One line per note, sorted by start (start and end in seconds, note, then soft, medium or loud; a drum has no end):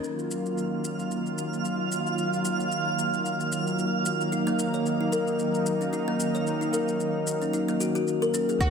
0.04 8.57 D#3 medium
0.04 8.57 F#3 medium
0.04 8.57 A#3 medium
0.04 4.28 F4 medium
0.04 8.63 F5 medium
0.04 shaker soft
0.19 shaker soft
0.31 shaker medium
0.46 shaker soft
0.58 shaker soft
0.84 shaker medium
0.99 shaker soft
1.11 shaker soft
1.26 shaker soft
1.38 shaker medium
1.53 shaker soft
1.65 shaker soft
1.92 shaker medium
2.07 shaker soft
2.18 shaker soft
2.33 shaker soft
2.45 shaker medium
2.60 shaker soft
2.72 shaker soft
2.99 shaker medium
3.14 shaker soft
3.25 shaker soft
3.40 shaker soft
3.52 shaker medium
3.67 shaker soft
3.79 shaker soft
4.05 shaker medium
4.21 shaker soft
4.32 4.46 D#4 medium
4.32 8.57 D#4 medium
4.32 shaker soft
4.47 4.72 A#3 medium
4.47 shaker soft
4.59 shaker medium
4.74 4.85 C#5 medium
4.74 shaker soft
4.86 shaker soft
5.01 5.11 D#4 medium
5.12 5.27 A#4 medium
5.12 shaker medium
5.27 shaker soft
5.39 shaker soft
5.54 shaker soft
5.66 shaker medium
5.81 5.92 C#4 medium
5.81 shaker soft
5.93 6.06 D#4 medium
5.93 shaker soft
6.08 6.33 A#3 medium
6.20 shaker medium
6.35 6.46 C#5 medium
6.35 shaker soft
6.47 shaker soft
6.61 6.72 D#4 medium
6.61 shaker soft
6.73 6.87 A#4 medium
6.73 shaker medium
6.88 shaker soft
7.00 shaker soft
7.27 shaker medium
7.42 7.53 C#4 medium
7.42 shaker soft
7.53 7.67 D#4 medium
7.53 shaker soft
7.68 7.79 A#3 medium
7.68 shaker soft
7.80 7.94 F#4 medium
7.80 shaker medium
7.95 8.07 F#4 medium
7.95 shaker soft
8.07 shaker soft
8.22 8.33 A#4 medium
8.22 shaker soft
8.34 8.48 C#4 medium
8.34 shaker medium
8.49 8.56 G#4 medium
8.49 shaker soft
8.60 8.70 D#2 loud
8.60 8.70 D#3 medium
8.60 8.70 F#3 medium
8.60 8.70 A#3 medium
8.60 8.70 F#4 loud
8.60 8.70 F5 loud
8.60 kick loud
8.60 shaker soft